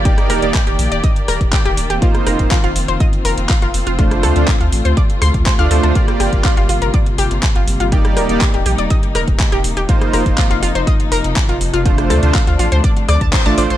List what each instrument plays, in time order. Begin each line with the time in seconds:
Already playing: analog synth bass G1, string section A#3 G4 D5
0.05 string section D#3, supersaw synth A#3 D#4 G4 D5, synth pluck G4, kick, closed hi-hat
0.18 cross-stick, closed hi-hat
0.30 analog synth bass D#1, synth pluck A#4, cross-stick, open hi-hat
0.42 analog synth bass D#1, supersaw synth A#3 D#4 G4 D5, closed hi-hat
0.54 synth pluck G4, kick, clap, closed hi-hat
0.67 analog synth bass D#1, synth pluck G4, closed hi-hat
0.79 analog synth bass A#1, open hi-hat
0.92 analog synth bass D#1, synth pluck D5, closed hi-hat
1.04 synth pluck D#5, kick, closed hi-hat
1.16 closed hi-hat
1.28 analog synth bass D#1, synth pluck A#4, cross-stick, open hi-hat
1.41 analog synth bass D#1, kick, closed hi-hat
1.53 synth pluck G4, kick, clap, closed hi-hat
1.65 analog synth bass D#1, synth pluck G4, closed hi-hat
1.77 analog synth bass D#1, open hi-hat
1.90 analog synth bass D#1, synth pluck G4, closed hi-hat
2.02 supersaw synth A#3 D#4 F4 C5, string section C4 F4, synth pluck F4, kick, closed hi-hat
2.15 cross-stick, closed hi-hat
2.27 analog synth bass F1, synth pluck A#4, cross-stick, open hi-hat
2.39 analog synth bass F1, supersaw synth A#3 D#4 F4 C5, kick, closed hi-hat
2.51 synth pluck F4, kick, clap, closed hi-hat
2.64 analog synth bass F1, synth pluck F4, closed hi-hat
2.76 analog synth bass F1, open hi-hat
2.88 analog synth bass F1, synth pluck C5, closed hi-hat
3.00 synth pluck D#5, kick, closed hi-hat
3.13 closed hi-hat
3.25 analog synth bass F1, synth pluck A#4, open hi-hat
3.38 analog synth bass F1, closed hi-hat
3.49 synth pluck F4, kick, clap, closed hi-hat
3.62 analog synth bass F1, synth pluck F4, closed hi-hat
3.74 analog synth bass F1, open hi-hat
3.87 analog synth bass F1, synth pluck F4, closed hi-hat
3.99 string section C3 A3, supersaw synth A3 D4 F4 C5, synth pluck F4, kick, closed hi-hat
4.11 cross-stick, closed hi-hat
4.23 analog synth bass D2, synth pluck A4, cross-stick, open hi-hat
4.36 analog synth bass D2, supersaw synth A3 D4 F4 C5, closed hi-hat
4.48 synth pluck F4, kick, clap, closed hi-hat
4.61 analog synth bass D2, synth pluck F4, closed hi-hat
4.72 analog synth bass A1, open hi-hat
4.85 analog synth bass D2, synth pluck C5, closed hi-hat
4.97 synth pluck D5, kick, closed hi-hat
5.10 closed hi-hat
5.22 analog synth bass D2, synth pluck C6, cross-stick, open hi-hat
5.34 analog synth bass D2, kick, closed hi-hat
5.46 synth pluck C5, kick, clap, closed hi-hat
5.59 analog synth bass D2, supersaw synth A3 D4 F4 D5, synth pluck F5, closed hi-hat
5.71 analog synth bass D2, supersaw synth A3 D4 F4 C5, synth pluck A4, open hi-hat
5.83 analog synth bass D2, synth pluck A4, closed hi-hat
5.95 string section G3 A#3, supersaw synth A#3 F4 G4 D5, synth pluck F4, kick, closed hi-hat
6.08 cross-stick, closed hi-hat
6.20 analog synth bass G1, synth pluck G4, cross-stick, open hi-hat
6.33 analog synth bass G1, supersaw synth A#3 F4 G4 D5, kick, closed hi-hat
6.44 synth pluck F4, kick, clap, closed hi-hat
6.57 analog synth bass G1, synth pluck F4, closed hi-hat
6.69 analog synth bass G1, synth pluck F4, open hi-hat
6.82 analog synth bass G1, synth pluck A#4, closed hi-hat
6.94 synth pluck D5, kick, closed hi-hat
7.06 closed hi-hat
7.18 analog synth bass G1, synth pluck G4, open hi-hat
7.31 analog synth bass G1, closed hi-hat
7.43 kick, clap, closed hi-hat
7.56 analog synth bass G1, synth pluck F4, closed hi-hat
7.68 analog synth bass G1, open hi-hat
7.80 analog synth bass G1, synth pluck F4, closed hi-hat
7.92 supersaw synth A#3 D#4 G4 D5, string section A#3 D#4, synth pluck G4, kick, closed hi-hat
8.05 cross-stick, closed hi-hat
8.17 analog synth bass D#1, synth pluck A#4, cross-stick, open hi-hat
8.29 analog synth bass D#1, supersaw synth A#3 D#4 G4 D5, closed hi-hat
8.41 synth pluck G4, kick, clap, closed hi-hat
8.54 analog synth bass D#1, synth pluck G4, closed hi-hat
8.66 analog synth bass A#1, synth pluck G4, open hi-hat
8.78 analog synth bass D#1, synth pluck D5, closed hi-hat
8.90 synth pluck D#5, kick, closed hi-hat
9.03 closed hi-hat
9.15 analog synth bass D#1, synth pluck A#4, cross-stick, open hi-hat
9.28 analog synth bass D#1, kick, closed hi-hat
9.39 kick, clap, closed hi-hat
9.52 analog synth bass D#1, synth pluck G4, closed hi-hat
9.64 analog synth bass D#1, open hi-hat
9.77 analog synth bass D#1, synth pluck G4, closed hi-hat
9.89 string section C3 F3 D#4, supersaw synth A#3 D#4 F4 C5, synth pluck F4, kick, closed hi-hat
10.01 cross-stick, closed hi-hat
10.13 analog synth bass F1, synth pluck A#4, cross-stick, open hi-hat
10.26 analog synth bass F1, supersaw synth A#3 D#4 F4 C5, kick, closed hi-hat
10.38 synth pluck F4, kick, clap, closed hi-hat
10.51 analog synth bass F1, synth pluck F4, closed hi-hat
10.63 analog synth bass F1, synth pluck F4, open hi-hat
10.75 analog synth bass F1, synth pluck C5, closed hi-hat
10.87 synth pluck D#5, kick, closed hi-hat
11.00 closed hi-hat
11.12 analog synth bass F1, synth pluck A#4, open hi-hat
11.24 analog synth bass F1, closed hi-hat
11.36 kick, clap, closed hi-hat
11.49 analog synth bass F1, synth pluck F4, closed hi-hat
11.61 analog synth bass F1, open hi-hat
11.74 analog synth bass F1, synth pluck F4, closed hi-hat
11.86 supersaw synth A3 D4 F4 C5, string section A3 D4, synth pluck F4, kick, closed hi-hat
11.98 cross-stick, closed hi-hat
12.10 analog synth bass D2, synth pluck A4, cross-stick, open hi-hat
12.23 analog synth bass D2, supersaw synth A3 D4 F4 C5, closed hi-hat
12.35 synth pluck F4, kick, clap, closed hi-hat
12.47 analog synth bass D2, synth pluck F4, closed hi-hat
12.59 analog synth bass A1, synth pluck F4, open hi-hat
12.72 analog synth bass D2, synth pluck C5, closed hi-hat
12.84 synth pluck D5, kick, closed hi-hat
12.97 closed hi-hat
13.09 analog synth bass D2, synth pluck D5, cross-stick, open hi-hat
13.21 analog synth bass D2, synth pluck A5, kick, closed hi-hat
13.33 synth pluck C5, kick, clap, closed hi-hat
13.46 analog synth bass A1, supersaw synth A3 D4 F4 D5, synth pluck A5, closed hi-hat
13.58 analog synth bass A1, supersaw synth A3 D4 F4 C5, synth pluck D5, open hi-hat
13.70 analog synth bass A1, synth pluck C5, closed hi-hat